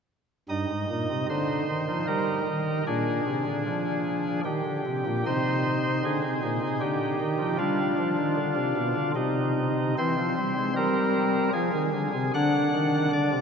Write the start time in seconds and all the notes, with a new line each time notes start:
0.49 G2 D#4 D#5
0.69 G#2
0.90 A#2
1.10 C3
1.30 D3 C5
1.69 D#3
1.88 F3
2.07 G3 A#4
2.47 D#3
2.87 A#2 D4 G#4
3.26 C3
3.46 D3
3.66 F3
4.45 D#3 G4
4.65 D3
4.86 C3
5.06 A#2
5.26 C3 D#4 C5
6.05 D3 G#4
6.24 C3
6.43 A#2
6.61 C3
6.81 D3 G4
7.20 D#3
7.39 F3
7.58 G3 D4 F4
7.98 F3
8.18 D#3
8.37 D3
8.56 C3
8.76 B2
8.96 D3
9.16 C3 D#4
9.98 E3 C4 C5
10.18 F3
10.37 G3
10.57 G#3
10.76 G3 A#4
11.53 F3 G#4
11.73 D#3
11.93 D3
12.14 C3
12.34 D3 D4 F#5
12.73 D#3
13.13 D3 D5
13.32 C3